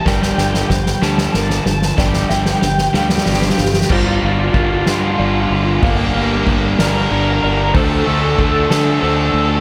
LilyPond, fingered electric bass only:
\new Staff \with { instrumentName = "Fingered electric bass" } { \clef bass \time 6/8 \key g \minor \tempo 4. = 62 g,,8 g,,8 g,,8 d,8 g,,8 g,,8 | g,,8 g,,8 g,,8 d,8 g,,8 g,,8 | g,,8 g,,8 g,,8 g,8 g,,8 g,,8 | g,,8 g,,8 g,,8 g,,8 g,,8 g,,8 |
d,8 d,8 d,8 d8 d,8 d,8 | }